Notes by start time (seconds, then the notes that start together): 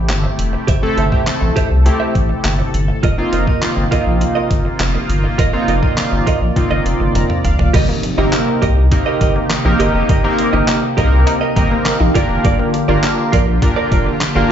Already playing: A1 C3 A3 E4 G4
0.09 G1, muted clean electric guitar stroke, snare, clap, closed hi-hat
0.24 muted clean electric guitar stroke
0.39 E1, closed hi-hat
0.53 muted clean electric guitar stroke
0.67 G1 G4 A4 C5 E5, kick, closed hi-hat
0.82 A3 C4 E4 A4, muted clean electric guitar stroke
0.97 G1 G4 C5 E5, closed hi-hat
1.12 A3 C4 E4 G4 C5 E5, kick
1.27 A3 C4 E4 A4, muted clean electric guitar stroke, snare, clap, closed hi-hat
1.41 A1, muted clean electric guitar stroke
1.56 G4 C5 E5, kick, closed hi-hat
1.71 C2, muted clean electric guitar stroke
1.85 A3 C4 E4 G4, muted clean electric guitar stroke, closed hi-hat
2.00 G4 C5 E5
2.15 A1, muted clean electric guitar stroke, kick, closed hi-hat
2.29 muted clean electric guitar stroke
2.44 G1, muted clean electric guitar stroke, snare, clap, closed hi-hat
2.59 muted clean electric guitar stroke
2.74 G1, closed hi-hat
2.88 muted clean electric guitar stroke
3.03 F1 A#3 D#4 F4 A#4 D#5, kick, closed hi-hat
3.18 A#3 C4 D#4 F4, muted clean electric guitar stroke
3.32 F1 F4 A#4 D#5, closed hi-hat
3.47 F4 A#4 D#5, kick
3.62 A#3 C4 D#4 F4, muted clean electric guitar stroke, snare, clap, closed hi-hat
3.77 G1, muted clean electric guitar stroke
3.91 A#3 C4 D#4 F4 A#4 D#5, kick, closed hi-hat
4.06 A#1, muted clean electric guitar stroke
4.21 muted clean electric guitar stroke, closed hi-hat
4.35 F4 A#4 D#5
4.50 G1, muted clean electric guitar stroke, kick, closed hi-hat
4.65 muted clean electric guitar stroke
4.80 F1, muted clean electric guitar stroke, snare, clap, closed hi-hat
4.94 muted clean electric guitar stroke
5.09 G1, closed hi-hat
5.24 muted clean electric guitar stroke
5.38 F1 F4 A#4 D5 D#5, kick, closed hi-hat
5.53 A#3 C4 D#4 F4, muted clean electric guitar stroke
5.68 F1 F4 A#4 D#5, closed hi-hat
5.82 A#3 C4 D#4 F4 A#4 D#5, kick
5.97 A#3 C4 D#4 F4, muted clean electric guitar stroke, snare, clap, closed hi-hat
6.12 G1, muted clean electric guitar stroke
6.27 F4 A#4 D#5, kick, closed hi-hat
6.41 A#1, muted clean electric guitar stroke
6.56 A#3 C4 D#4 F4, muted clean electric guitar stroke, kick, closed hi-hat, high tom
6.71 G1 F4 A#4 D#5, high tom
6.86 F1 C6, muted clean electric guitar stroke, closed hi-hat
7.00 G1, muted clean electric guitar stroke
7.15 F1 A#5, muted clean electric guitar stroke, closed hi-hat, mid tom
7.30 muted clean electric guitar stroke, mid tom
7.45 F1 F5, closed hi-hat, floor tom
7.59 G1, muted clean electric guitar stroke, floor tom
7.73 G1 C3 G3 A#3 D#4 G4 A#4 D#5, kick, closed hi-hat, crash, impact
7.88 A#3, muted clean electric guitar stroke
8.03 muted clean electric guitar stroke, closed hi-hat
8.18 G1 A#3 C4 D#4 G4 A#4 D#5
8.33 snare, clap, closed hi-hat
8.47 muted clean electric guitar stroke
8.62 C2 G4 A#4 D#5, kick, closed hi-hat
8.77 muted clean electric guitar stroke
8.91 A#3 C4 D#4 G4 A#4, muted clean electric guitar stroke, kick, closed hi-hat
9.06 G4 A#4 D#5
9.21 G1 G3 G4 A#4 D#5, kick, closed hi-hat
9.36 A#3, muted clean electric guitar stroke
9.50 muted clean electric guitar stroke, snare, clap, closed hi-hat
9.65 A#1 A#3 C4 D#4 G4 A#4, muted clean electric guitar stroke
9.79 G1 G4 A#4 D#5, closed hi-hat
9.94 F1 G4 A#4 D#5
10.09 G1 G3 G4 A#4 D#5, kick, closed hi-hat
10.24 A#3 C4 D#4 G4 A#4, muted clean electric guitar stroke
10.38 muted clean electric guitar stroke, closed hi-hat
10.53 G1 D#4 G4 A#4 D#5
10.68 snare, clap, closed hi-hat
10.82 muted clean electric guitar stroke
10.97 C2 A#3 C4 D#4 G4 A#4 D#5, kick, closed hi-hat
11.12 muted clean electric guitar stroke
11.26 D#4, muted clean electric guitar stroke, closed hi-hat
11.41 G4 A#4 D#5
11.56 G1 G3 A#3 C4 D#4 G4 A#4 D#5, kick, closed hi-hat
11.71 A#3, muted clean electric guitar stroke
11.85 snare, clap, closed hi-hat
12.00 A#1 D#4, muted clean electric guitar stroke
12.14 G1 D3 A#3 D4 F4 G4 A#4 D5, kick, closed hi-hat
12.29 F1, muted clean electric guitar stroke
12.44 G1 G3 F4 A#4 D5, kick, closed hi-hat
12.59 A#3, muted clean electric guitar stroke
12.74 muted clean electric guitar stroke, closed hi-hat
12.88 G1 A#3 D4 F4 G4 A#4 D5
13.03 snare, clap, closed hi-hat
13.18 muted clean electric guitar stroke
13.32 A#1 F4 A#4 D5, kick, closed hi-hat
13.47 muted clean electric guitar stroke
13.62 A#3 D4 F4 G4 A#4, muted clean electric guitar stroke, kick, closed hi-hat
13.76 F4 A#4 D5
13.91 F1 G3 F4 A#4 D5, kick, closed hi-hat
14.06 A#3, muted clean electric guitar stroke
14.21 muted clean electric guitar stroke, snare, clap, closed hi-hat
14.35 G1 A#3 D4 F4 G4 A#4, muted clean electric guitar stroke